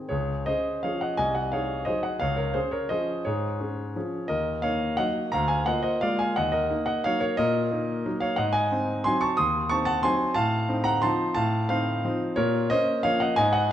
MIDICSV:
0, 0, Header, 1, 2, 480
1, 0, Start_track
1, 0, Key_signature, -5, "major"
1, 0, Tempo, 364299
1, 146, Time_signature, 3, 2, 24, 8
1, 1107, Tempo, 345821
1, 9747, Tempo, 329852
1, 15027, Tempo, 336889
1, 19344, End_track
2, 0, Start_track
2, 0, Title_t, "Grand piano"
2, 0, Program_c, 0, 0
2, 113, Note_on_c, 0, 73, 71
2, 125, Note_on_c, 0, 68, 52
2, 140, Note_on_c, 0, 37, 57
2, 388, Control_c, 0, 64, 127
2, 581, Note_off_c, 0, 68, 0
2, 606, Note_on_c, 0, 75, 75
2, 608, Note_off_c, 0, 37, 0
2, 610, Note_off_c, 0, 73, 0
2, 617, Note_on_c, 0, 72, 61
2, 629, Note_on_c, 0, 61, 40
2, 630, Note_on_c, 0, 68, 46
2, 643, Control_c, 0, 64, 0
2, 1060, Note_off_c, 0, 61, 0
2, 1061, Note_off_c, 0, 68, 0
2, 1068, Note_off_c, 0, 72, 0
2, 1091, Note_on_c, 0, 77, 72
2, 1097, Note_off_c, 0, 75, 0
2, 1108, Note_on_c, 0, 53, 43
2, 1110, Note_on_c, 0, 73, 55
2, 1119, Note_on_c, 0, 61, 40
2, 1126, Note_on_c, 0, 68, 45
2, 1334, Note_off_c, 0, 73, 0
2, 1341, Note_off_c, 0, 77, 0
2, 1342, Note_on_c, 0, 78, 70
2, 1355, Note_on_c, 0, 75, 51
2, 1536, Note_off_c, 0, 53, 0
2, 1542, Note_off_c, 0, 61, 0
2, 1546, Note_off_c, 0, 68, 0
2, 1557, Note_off_c, 0, 75, 0
2, 1570, Note_on_c, 0, 80, 89
2, 1578, Note_on_c, 0, 75, 65
2, 1579, Note_off_c, 0, 78, 0
2, 1585, Note_on_c, 0, 36, 55
2, 1796, Note_off_c, 0, 75, 0
2, 1808, Note_off_c, 0, 80, 0
2, 1810, Note_on_c, 0, 78, 67
2, 1829, Note_on_c, 0, 75, 51
2, 1852, Control_c, 0, 64, 127
2, 2037, Note_off_c, 0, 36, 0
2, 2041, Note_off_c, 0, 75, 0
2, 2045, Note_on_c, 0, 77, 69
2, 2048, Note_off_c, 0, 78, 0
2, 2062, Note_on_c, 0, 73, 64
2, 2068, Note_on_c, 0, 63, 40
2, 2070, Note_on_c, 0, 68, 44
2, 2494, Note_off_c, 0, 63, 0
2, 2495, Note_off_c, 0, 68, 0
2, 2505, Note_off_c, 0, 73, 0
2, 2508, Note_on_c, 0, 75, 77
2, 2522, Note_on_c, 0, 72, 62
2, 2530, Note_off_c, 0, 77, 0
2, 2536, Note_on_c, 0, 54, 40
2, 2536, Note_on_c, 0, 63, 41
2, 2546, Control_c, 0, 64, 0
2, 2546, Note_on_c, 0, 68, 46
2, 2748, Note_off_c, 0, 75, 0
2, 2753, Note_off_c, 0, 72, 0
2, 2758, Note_on_c, 0, 78, 69
2, 2769, Note_on_c, 0, 75, 53
2, 2965, Note_off_c, 0, 54, 0
2, 2965, Note_off_c, 0, 63, 0
2, 2971, Note_off_c, 0, 68, 0
2, 2988, Note_on_c, 0, 77, 84
2, 2992, Note_off_c, 0, 75, 0
2, 3003, Note_off_c, 0, 78, 0
2, 3005, Note_on_c, 0, 73, 65
2, 3013, Note_on_c, 0, 37, 57
2, 3201, Note_off_c, 0, 73, 0
2, 3221, Note_on_c, 0, 73, 66
2, 3236, Note_off_c, 0, 77, 0
2, 3238, Note_on_c, 0, 70, 55
2, 3253, Control_c, 0, 64, 127
2, 3463, Note_on_c, 0, 72, 78
2, 3466, Note_off_c, 0, 70, 0
2, 3475, Note_off_c, 0, 37, 0
2, 3475, Note_off_c, 0, 73, 0
2, 3475, Note_on_c, 0, 68, 59
2, 3486, Note_on_c, 0, 61, 43
2, 3505, Control_c, 0, 64, 0
2, 3707, Note_off_c, 0, 68, 0
2, 3707, Note_on_c, 0, 73, 69
2, 3718, Note_off_c, 0, 72, 0
2, 3721, Note_on_c, 0, 70, 56
2, 3928, Note_off_c, 0, 61, 0
2, 3954, Note_on_c, 0, 75, 80
2, 3955, Note_off_c, 0, 70, 0
2, 3966, Note_off_c, 0, 73, 0
2, 3969, Note_on_c, 0, 72, 57
2, 3976, Note_on_c, 0, 53, 45
2, 3983, Note_on_c, 0, 61, 45
2, 3987, Note_on_c, 0, 68, 44
2, 4411, Note_off_c, 0, 53, 0
2, 4415, Note_off_c, 0, 61, 0
2, 4417, Note_off_c, 0, 68, 0
2, 4422, Note_off_c, 0, 72, 0
2, 4447, Note_on_c, 0, 73, 74
2, 4448, Note_off_c, 0, 75, 0
2, 4467, Note_on_c, 0, 68, 54
2, 4471, Note_on_c, 0, 44, 58
2, 4709, Control_c, 0, 64, 127
2, 4932, Note_off_c, 0, 68, 0
2, 4934, Note_off_c, 0, 44, 0
2, 4941, Note_on_c, 0, 61, 40
2, 4953, Note_on_c, 0, 68, 45
2, 5381, Note_off_c, 0, 61, 0
2, 5388, Note_off_c, 0, 68, 0
2, 5438, Note_on_c, 0, 53, 44
2, 5443, Note_on_c, 0, 61, 43
2, 5444, Control_c, 0, 64, 0
2, 5448, Note_on_c, 0, 68, 44
2, 5863, Note_off_c, 0, 53, 0
2, 5866, Note_off_c, 0, 61, 0
2, 5869, Note_off_c, 0, 68, 0
2, 5881, Note_on_c, 0, 75, 80
2, 5898, Note_on_c, 0, 70, 65
2, 5901, Note_off_c, 0, 73, 0
2, 5907, Note_on_c, 0, 39, 57
2, 6204, Control_c, 0, 64, 127
2, 6339, Note_off_c, 0, 70, 0
2, 6356, Note_on_c, 0, 77, 87
2, 6363, Note_off_c, 0, 39, 0
2, 6364, Note_off_c, 0, 75, 0
2, 6372, Note_on_c, 0, 73, 69
2, 6376, Note_on_c, 0, 58, 48
2, 6385, Note_on_c, 0, 63, 51
2, 6817, Note_off_c, 0, 58, 0
2, 6821, Note_off_c, 0, 63, 0
2, 6829, Note_off_c, 0, 73, 0
2, 6838, Note_on_c, 0, 78, 93
2, 6850, Note_on_c, 0, 75, 62
2, 6855, Note_off_c, 0, 77, 0
2, 6863, Note_on_c, 0, 54, 46
2, 6866, Note_on_c, 0, 58, 44
2, 6869, Note_on_c, 0, 63, 48
2, 6881, Control_c, 0, 64, 0
2, 7291, Note_off_c, 0, 54, 0
2, 7293, Note_off_c, 0, 58, 0
2, 7295, Note_off_c, 0, 63, 0
2, 7299, Note_off_c, 0, 75, 0
2, 7322, Note_on_c, 0, 82, 95
2, 7327, Note_off_c, 0, 78, 0
2, 7342, Note_on_c, 0, 77, 74
2, 7346, Note_on_c, 0, 38, 68
2, 7544, Note_off_c, 0, 77, 0
2, 7547, Note_on_c, 0, 80, 81
2, 7563, Note_off_c, 0, 82, 0
2, 7565, Note_on_c, 0, 77, 58
2, 7569, Control_c, 0, 64, 127
2, 7790, Note_off_c, 0, 77, 0
2, 7795, Note_on_c, 0, 78, 90
2, 7798, Note_off_c, 0, 80, 0
2, 7800, Note_off_c, 0, 38, 0
2, 7815, Note_on_c, 0, 75, 65
2, 7820, Note_on_c, 0, 58, 47
2, 7825, Note_on_c, 0, 65, 50
2, 7830, Control_c, 0, 64, 0
2, 8006, Note_off_c, 0, 75, 0
2, 8027, Note_on_c, 0, 75, 81
2, 8046, Note_on_c, 0, 72, 61
2, 8047, Note_off_c, 0, 78, 0
2, 8257, Note_off_c, 0, 58, 0
2, 8260, Note_off_c, 0, 65, 0
2, 8280, Note_off_c, 0, 72, 0
2, 8284, Note_on_c, 0, 77, 88
2, 8288, Note_off_c, 0, 75, 0
2, 8304, Note_on_c, 0, 74, 71
2, 8305, Note_on_c, 0, 56, 49
2, 8312, Note_on_c, 0, 58, 48
2, 8321, Note_on_c, 0, 65, 48
2, 8529, Note_off_c, 0, 77, 0
2, 8530, Note_off_c, 0, 74, 0
2, 8530, Note_on_c, 0, 80, 81
2, 8550, Note_on_c, 0, 77, 64
2, 8735, Note_off_c, 0, 56, 0
2, 8739, Note_off_c, 0, 58, 0
2, 8744, Note_off_c, 0, 65, 0
2, 8766, Note_off_c, 0, 77, 0
2, 8770, Note_on_c, 0, 78, 94
2, 8773, Note_off_c, 0, 80, 0
2, 8785, Note_on_c, 0, 75, 71
2, 8792, Note_on_c, 0, 39, 65
2, 8969, Note_off_c, 0, 75, 0
2, 8989, Note_on_c, 0, 75, 81
2, 9004, Note_on_c, 0, 70, 64
2, 9007, Note_off_c, 0, 78, 0
2, 9017, Control_c, 0, 64, 127
2, 9245, Note_off_c, 0, 39, 0
2, 9247, Note_on_c, 0, 58, 54
2, 9250, Note_on_c, 0, 63, 58
2, 9270, Control_c, 0, 64, 0
2, 9448, Note_off_c, 0, 75, 0
2, 9459, Note_on_c, 0, 78, 86
2, 9460, Note_off_c, 0, 70, 0
2, 9469, Note_on_c, 0, 75, 68
2, 9691, Note_off_c, 0, 58, 0
2, 9693, Note_off_c, 0, 63, 0
2, 9711, Note_off_c, 0, 75, 0
2, 9716, Note_on_c, 0, 77, 94
2, 9724, Note_off_c, 0, 78, 0
2, 9732, Note_on_c, 0, 73, 79
2, 9738, Note_on_c, 0, 54, 49
2, 9748, Note_on_c, 0, 58, 47
2, 9750, Note_on_c, 0, 63, 60
2, 9926, Note_off_c, 0, 73, 0
2, 9948, Note_on_c, 0, 73, 87
2, 9958, Note_on_c, 0, 70, 60
2, 9976, Note_off_c, 0, 77, 0
2, 10176, Note_off_c, 0, 54, 0
2, 10181, Note_off_c, 0, 58, 0
2, 10183, Note_off_c, 0, 63, 0
2, 10194, Note_off_c, 0, 70, 0
2, 10195, Note_on_c, 0, 75, 99
2, 10207, Note_off_c, 0, 73, 0
2, 10216, Note_on_c, 0, 46, 71
2, 10216, Note_on_c, 0, 70, 71
2, 10531, Control_c, 0, 64, 127
2, 10692, Note_off_c, 0, 46, 0
2, 10692, Note_on_c, 0, 58, 55
2, 10702, Note_on_c, 0, 63, 51
2, 11137, Note_off_c, 0, 58, 0
2, 11142, Note_off_c, 0, 63, 0
2, 11187, Note_on_c, 0, 54, 57
2, 11190, Note_on_c, 0, 58, 46
2, 11194, Note_on_c, 0, 63, 61
2, 11211, Control_c, 0, 64, 0
2, 11372, Note_off_c, 0, 70, 0
2, 11405, Note_on_c, 0, 77, 86
2, 11419, Note_off_c, 0, 75, 0
2, 11419, Note_on_c, 0, 73, 68
2, 11618, Note_off_c, 0, 54, 0
2, 11620, Note_off_c, 0, 58, 0
2, 11622, Note_off_c, 0, 63, 0
2, 11637, Note_on_c, 0, 78, 91
2, 11645, Note_off_c, 0, 73, 0
2, 11654, Note_on_c, 0, 75, 61
2, 11655, Note_off_c, 0, 77, 0
2, 11663, Note_on_c, 0, 44, 69
2, 11872, Note_off_c, 0, 75, 0
2, 11873, Note_on_c, 0, 80, 100
2, 11891, Note_off_c, 0, 78, 0
2, 11894, Note_on_c, 0, 75, 75
2, 11961, Control_c, 0, 64, 127
2, 12133, Note_off_c, 0, 44, 0
2, 12152, Note_on_c, 0, 60, 53
2, 12160, Note_on_c, 0, 63, 60
2, 12585, Note_off_c, 0, 75, 0
2, 12595, Note_off_c, 0, 60, 0
2, 12600, Note_off_c, 0, 63, 0
2, 12620, Note_off_c, 0, 80, 0
2, 12624, Note_on_c, 0, 84, 103
2, 12642, Note_on_c, 0, 80, 80
2, 12652, Note_on_c, 0, 54, 57
2, 12652, Note_on_c, 0, 60, 53
2, 12659, Control_c, 0, 64, 0
2, 12661, Note_on_c, 0, 63, 66
2, 12865, Note_on_c, 0, 85, 94
2, 12871, Note_off_c, 0, 80, 0
2, 12879, Note_off_c, 0, 84, 0
2, 12881, Note_on_c, 0, 81, 74
2, 13081, Note_off_c, 0, 54, 0
2, 13082, Note_off_c, 0, 60, 0
2, 13086, Note_off_c, 0, 63, 0
2, 13100, Note_on_c, 0, 87, 106
2, 13105, Note_off_c, 0, 81, 0
2, 13111, Note_on_c, 0, 84, 83
2, 13113, Note_off_c, 0, 85, 0
2, 13122, Note_on_c, 0, 39, 71
2, 13381, Control_c, 0, 64, 127
2, 13558, Note_off_c, 0, 84, 0
2, 13574, Note_on_c, 0, 85, 107
2, 13583, Note_off_c, 0, 39, 0
2, 13586, Note_off_c, 0, 87, 0
2, 13597, Note_on_c, 0, 81, 78
2, 13598, Note_on_c, 0, 60, 51
2, 13602, Note_on_c, 0, 63, 54
2, 13783, Note_off_c, 0, 81, 0
2, 13805, Note_on_c, 0, 81, 105
2, 13822, Note_on_c, 0, 78, 75
2, 13830, Note_off_c, 0, 85, 0
2, 14038, Note_off_c, 0, 60, 0
2, 14041, Note_off_c, 0, 63, 0
2, 14060, Note_off_c, 0, 78, 0
2, 14060, Note_on_c, 0, 84, 109
2, 14069, Note_off_c, 0, 81, 0
2, 14072, Note_on_c, 0, 80, 79
2, 14076, Note_on_c, 0, 54, 55
2, 14081, Note_on_c, 0, 60, 59
2, 14088, Note_on_c, 0, 63, 57
2, 14109, Control_c, 0, 64, 0
2, 14503, Note_off_c, 0, 54, 0
2, 14506, Note_off_c, 0, 60, 0
2, 14510, Note_off_c, 0, 63, 0
2, 14515, Note_off_c, 0, 80, 0
2, 14519, Note_on_c, 0, 81, 106
2, 14535, Note_on_c, 0, 77, 91
2, 14543, Note_off_c, 0, 84, 0
2, 14544, Note_on_c, 0, 45, 70
2, 14825, Control_c, 0, 64, 127
2, 15003, Note_off_c, 0, 45, 0
2, 15015, Note_on_c, 0, 60, 56
2, 15018, Note_on_c, 0, 63, 62
2, 15206, Note_off_c, 0, 77, 0
2, 15233, Note_on_c, 0, 82, 102
2, 15248, Note_off_c, 0, 81, 0
2, 15251, Note_on_c, 0, 78, 87
2, 15458, Note_off_c, 0, 60, 0
2, 15460, Note_off_c, 0, 63, 0
2, 15486, Note_off_c, 0, 78, 0
2, 15488, Note_on_c, 0, 84, 99
2, 15495, Note_off_c, 0, 82, 0
2, 15503, Note_on_c, 0, 81, 91
2, 15514, Note_on_c, 0, 60, 56
2, 15515, Note_on_c, 0, 53, 55
2, 15517, Note_on_c, 0, 63, 63
2, 15530, Control_c, 0, 64, 0
2, 15934, Note_off_c, 0, 81, 0
2, 15940, Note_off_c, 0, 60, 0
2, 15941, Note_off_c, 0, 53, 0
2, 15942, Note_off_c, 0, 63, 0
2, 15956, Note_on_c, 0, 81, 105
2, 15974, Note_off_c, 0, 84, 0
2, 15975, Note_on_c, 0, 77, 78
2, 15982, Note_on_c, 0, 45, 77
2, 16276, Control_c, 0, 64, 127
2, 16424, Note_off_c, 0, 77, 0
2, 16446, Note_off_c, 0, 45, 0
2, 16446, Note_on_c, 0, 77, 92
2, 16448, Note_off_c, 0, 81, 0
2, 16459, Note_on_c, 0, 72, 70
2, 16466, Note_on_c, 0, 60, 56
2, 16475, Note_on_c, 0, 63, 62
2, 16902, Note_off_c, 0, 60, 0
2, 16907, Note_off_c, 0, 63, 0
2, 16955, Note_on_c, 0, 53, 55
2, 16958, Note_on_c, 0, 60, 61
2, 16964, Note_on_c, 0, 63, 60
2, 16966, Control_c, 0, 64, 0
2, 17137, Note_off_c, 0, 72, 0
2, 17182, Note_off_c, 0, 77, 0
2, 17379, Note_off_c, 0, 53, 0
2, 17381, Note_off_c, 0, 60, 0
2, 17385, Note_off_c, 0, 63, 0
2, 17400, Note_on_c, 0, 73, 95
2, 17416, Note_on_c, 0, 70, 78
2, 17421, Note_on_c, 0, 46, 75
2, 17650, Control_c, 0, 64, 127
2, 17853, Note_off_c, 0, 70, 0
2, 17875, Note_off_c, 0, 46, 0
2, 17878, Note_off_c, 0, 73, 0
2, 17884, Note_on_c, 0, 75, 103
2, 17901, Note_on_c, 0, 72, 79
2, 17904, Note_on_c, 0, 58, 56
2, 17911, Control_c, 0, 64, 0
2, 17914, Note_on_c, 0, 61, 63
2, 18338, Note_off_c, 0, 58, 0
2, 18343, Note_off_c, 0, 61, 0
2, 18351, Note_off_c, 0, 72, 0
2, 18358, Note_on_c, 0, 77, 103
2, 18377, Note_off_c, 0, 75, 0
2, 18377, Note_on_c, 0, 53, 59
2, 18379, Note_on_c, 0, 73, 77
2, 18392, Note_on_c, 0, 58, 57
2, 18393, Note_on_c, 0, 61, 53
2, 18600, Note_on_c, 0, 78, 88
2, 18605, Note_off_c, 0, 73, 0
2, 18612, Note_off_c, 0, 77, 0
2, 18612, Note_on_c, 0, 75, 68
2, 18809, Note_off_c, 0, 53, 0
2, 18817, Note_off_c, 0, 58, 0
2, 18818, Note_off_c, 0, 61, 0
2, 18826, Note_off_c, 0, 75, 0
2, 18830, Note_on_c, 0, 80, 115
2, 18847, Note_off_c, 0, 78, 0
2, 18847, Note_on_c, 0, 75, 85
2, 18857, Note_on_c, 0, 44, 77
2, 19059, Note_off_c, 0, 75, 0
2, 19063, Note_on_c, 0, 78, 97
2, 19081, Note_on_c, 0, 75, 69
2, 19082, Note_off_c, 0, 80, 0
2, 19098, Control_c, 0, 64, 127
2, 19319, Note_off_c, 0, 75, 0
2, 19328, Note_off_c, 0, 78, 0
2, 19329, Note_off_c, 0, 44, 0
2, 19344, End_track
0, 0, End_of_file